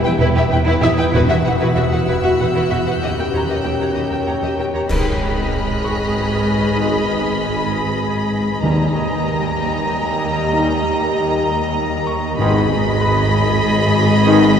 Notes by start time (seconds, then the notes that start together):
Already playing: G3 B3 B4 G5 G#5 B5
0.03 E2 E4 B4 G5
0.19 E1 E2 E4 B4
0.35 E2 E4 G4 E5
0.50 E1 E2 E4 B4 G5
0.65 E2 E4 B4
0.81 E1 E2 D#4 E4 G4 E5 D#6
0.97 E2 E4 B4 G5
1.13 E1 E2 B3 E4 F#4 B4 E6
1.29 E2 F#4 E5
1.45 E1 E2 F#4 B4 F#5
1.60 E2 E4 F#4 B4
1.75 E1 E2 F#4 E5 F#6
1.92 E2 F#4 B4 F#5
2.07 E1 E2 E4 F#4 B4
2.23 E2 F#4 E5
2.39 E1 E2 F#4 B4 F#5 G6
2.55 E2 E4 F#4 B4
2.70 E1 E2 F#4 E5
2.86 E2 F#4 B4 F#5
3.01 D#2 C#4 G4 A#4 C#5 D#5 G5
3.17 D#2 G4 A#4 G5
3.32 D#2 G4 C#5 A#5
3.48 D#2 G4 D#5
3.64 D#2 G4 A#4 G5
3.79 D#2 G4 C#5 A#5
3.85 G6
3.95 D#2 G4 D#5
4.10 D#2 G4 A#4 G5
4.27 D#2 G4 C#5 G5 A#5
4.42 D#2 G4 D#5
4.57 D#2 G4 A#4 G5
4.73 D#2 G4 C#5 A#5
4.88 G#1 G#2 D#3 G#3 B3 D#4 G#4 B4 D#5 G#5 B5 D#6 F6 F#6, concert bass drum, crash
5.84 C#5 C#6
6.76 D#3 G#3 B3 D#4
8.62 D#2 D#3 G3 A#3 D#4 A#4 D#5 G5 G#5 A#5
8.96 D#5 D#6
10.50 D#3 G3 A#3 D#4
12.07 C#6
12.39 G#1 G#2 D#3 G#3 B3 D#4 G#4 B4 D#5 G#5 B5
13.01 B4 B5
14.25 D#3 G#3 B3 D#4